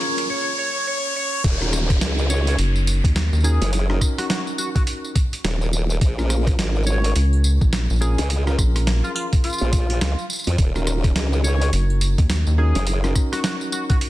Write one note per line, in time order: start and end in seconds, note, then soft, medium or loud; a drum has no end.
0.00 0.27 A#3 medium
0.00 0.28 C#4 medium
0.00 0.26 F4 medium
0.00 0.28 F4 medium
0.00 0.28 G#4 medium
0.00 0.28 A#4 medium
0.00 0.29 A#4 medium
0.00 0.26 C#5 medium
0.00 closed hi-hat soft
0.00 riser medium
0.18 closed hi-hat medium
0.30 0.56 C#5 medium
0.58 0.85 C#5 loud
0.87 1.13 C#5 loud
1.16 1.42 C#5 loud
1.44 2.00 D#1 loud
1.44 kick loud
1.44 closed hi-hat medium
1.44 crash loud
1.44 tambourine soft
1.44 downlifter medium
1.61 3.42 C#4 medium
1.61 3.41 D#4 medium
1.61 3.41 F#4 medium
1.61 3.42 A#4 medium
1.61 cross-stick soft
1.61 tambourine soft
1.73 cross-stick medium
1.73 tambourine medium
1.90 kick loud
1.90 cross-stick medium
1.90 closed hi-hat medium
1.90 tambourine soft
2.01 2.57 C#2 medium
2.01 snare loud
2.01 closed hi-hat medium
2.01 tambourine soft
2.19 tambourine soft
2.30 2.56 C#5 medium
2.30 tambourine medium
2.47 closed hi-hat medium
2.47 tambourine soft
2.58 3.01 F#1 loud
2.58 closed hi-hat medium
2.58 tambourine soft
2.76 tambourine soft
2.87 closed hi-hat medium
2.87 tambourine medium
3.04 3.30 D#2 loud
3.04 kick loud
3.04 closed hi-hat medium
3.04 tambourine soft
3.16 snare loud
3.16 closed hi-hat medium
3.16 tambourine soft
3.33 3.59 D#2 loud
3.33 tambourine soft
3.35 tambourine soft
3.41 3.61 C#4 medium
3.41 3.61 D#4 medium
3.41 3.61 F#4 medium
3.41 3.70 G#4 loud
3.41 3.61 A#4 medium
3.41 tambourine soft
3.44 tambourine medium
3.61 4.00 F#1 medium
3.61 closed hi-hat medium
3.61 tambourine soft
3.73 closed hi-hat medium
3.73 tambourine soft
3.90 5.13 C#4 medium
3.90 5.13 D#4 medium
3.90 5.13 F#4 medium
3.90 5.13 A#4 medium
3.90 cross-stick soft
4.01 kick medium
4.01 cross-stick medium
4.01 tambourine medium
4.18 4.26 F#4 medium
4.18 cross-stick medium
4.18 closed hi-hat medium
4.18 tambourine soft
4.29 4.41 F#4 medium
4.29 snare loud
4.29 closed hi-hat medium
4.29 tambourine soft
4.47 tambourine soft
4.58 4.69 F#4 medium
4.58 tambourine medium
4.75 4.83 F#4 medium
4.75 kick loud
4.75 closed hi-hat medium
4.75 tambourine soft
4.87 closed hi-hat medium
4.87 tambourine soft
5.04 tambourine soft
5.15 kick loud
5.15 closed hi-hat medium
5.15 tambourine medium
5.33 closed hi-hat medium
5.33 tambourine soft
5.44 6.00 D#1 loud
5.44 snare loud
5.44 closed hi-hat medium
5.44 tambourine soft
5.62 tambourine soft
5.73 tambourine medium
5.90 tambourine soft
6.01 6.57 A#1 loud
6.01 kick loud
6.01 closed hi-hat medium
6.01 tambourine soft
6.18 7.99 C#4 medium
6.18 7.98 F4 medium
6.18 7.98 G#4 medium
6.18 7.99 A#4 medium
6.18 cross-stick soft
6.18 tambourine soft
6.30 cross-stick medium
6.30 tambourine medium
6.47 kick loud
6.47 cross-stick medium
6.47 closed hi-hat medium
6.47 tambourine soft
6.58 7.14 G#1 loud
6.58 snare loud
6.58 closed hi-hat medium
6.58 tambourine soft
6.76 tambourine soft
6.83 7.13 C#5 medium
6.83 tambourine soft
6.87 tambourine medium
7.04 closed hi-hat medium
7.04 tambourine soft
7.16 7.59 C#2 loud
7.16 closed hi-hat medium
7.16 tambourine soft
7.33 tambourine soft
7.44 tambourine medium
7.61 7.87 A#1 loud
7.61 kick loud
7.61 tambourine soft
7.73 snare loud
7.73 closed hi-hat medium
7.73 tambourine soft
7.90 8.16 A#1 loud
7.90 tambourine soft
7.93 tambourine soft
7.96 tambourine soft
7.99 8.18 C#4 medium
7.99 8.18 F4 medium
7.99 8.27 G#4 medium
7.99 8.18 G#4 medium
7.99 8.18 A#4 medium
7.99 tambourine soft
8.02 tambourine medium
8.10 tambourine soft
8.14 closed hi-hat medium
8.14 tambourine soft
8.18 8.57 C#2 loud
8.18 tambourine soft
8.30 closed hi-hat medium
8.30 tambourine soft
8.47 9.70 C#4 medium
8.47 9.70 F4 medium
8.47 9.70 G#4 medium
8.47 9.70 A#4 medium
8.47 cross-stick soft
8.47 tambourine soft
8.58 9.01 A#1 loud
8.58 kick medium
8.58 cross-stick medium
8.58 tambourine medium
8.76 cross-stick soft
8.76 closed hi-hat medium
8.76 tambourine soft
8.87 snare loud
8.87 closed hi-hat medium
8.87 tambourine soft
9.04 9.11 F4 medium
9.04 tambourine soft
9.15 9.26 F4 medium
9.15 tambourine medium
9.33 kick loud
9.33 closed hi-hat medium
9.33 tambourine soft
9.44 10.25 F4 loud
9.44 closed hi-hat medium
9.44 tambourine soft
9.47 tambourine soft
9.50 tambourine soft
9.53 tambourine soft
9.58 tambourine soft
9.61 10.00 A#1 medium
9.61 tambourine soft
9.73 kick loud
9.73 closed hi-hat medium
9.73 tambourine medium
9.90 closed hi-hat medium
9.90 tambourine soft
10.01 10.16 C#2 loud
10.01 snare loud
10.01 closed hi-hat medium
10.01 tambourine soft
10.19 tambourine soft
10.30 tambourine medium
10.33 tambourine medium
10.36 tambourine soft
10.39 tambourine soft
10.44 10.57 F2 loud
10.44 closed hi-hat medium
10.44 tambourine soft
10.47 tambourine soft
10.58 11.14 D#1 medium
10.58 kick loud
10.58 closed hi-hat medium
10.58 tambourine soft
10.75 12.56 C#4 medium
10.75 12.56 D#4 medium
10.75 12.56 F#4 medium
10.75 12.56 A#4 medium
10.75 cross-stick soft
10.75 tambourine soft
10.87 cross-stick medium
10.87 tambourine medium
11.04 kick loud
11.04 cross-stick medium
11.04 closed hi-hat medium
11.04 tambourine soft
11.15 11.71 C#2 loud
11.15 snare loud
11.15 closed hi-hat medium
11.15 tambourine soft
11.33 tambourine soft
11.43 11.70 C#5 medium
11.43 tambourine medium
11.62 closed hi-hat medium
11.62 tambourine soft
11.73 12.16 F#1 medium
11.73 closed hi-hat medium
11.73 tambourine soft
11.90 tambourine soft
12.01 closed hi-hat medium
12.01 tambourine medium
12.18 12.44 D#2 loud
12.18 kick loud
12.18 closed hi-hat medium
12.18 tambourine soft
12.30 snare loud
12.30 closed hi-hat medium
12.30 tambourine soft
12.47 12.73 D#2 loud
12.47 tambourine soft
12.58 12.75 C#4 medium
12.58 12.75 D#4 medium
12.58 12.75 F#4 medium
12.58 12.84 G#4 loud
12.58 12.75 A#4 medium
12.75 13.14 F#1 loud
12.75 closed hi-hat soft
12.75 tambourine soft
12.87 closed hi-hat medium
12.87 tambourine soft
13.04 14.10 C#4 medium
13.04 14.10 D#4 medium
13.04 14.10 F#4 medium
13.04 14.10 A#4 medium
13.04 cross-stick soft
13.04 tambourine soft
13.15 kick medium
13.15 cross-stick medium
13.15 tambourine medium
13.32 13.40 F#4 medium
13.32 cross-stick medium
13.32 closed hi-hat medium
13.32 tambourine soft
13.44 13.55 F#4 medium
13.44 snare loud
13.44 closed hi-hat medium
13.44 tambourine soft
13.61 tambourine soft
13.72 13.83 F#4 medium
13.72 tambourine medium
13.89 13.97 F#4 medium
13.89 kick loud
13.89 closed hi-hat soft
13.89 tambourine soft
14.01 closed hi-hat medium
14.01 tambourine soft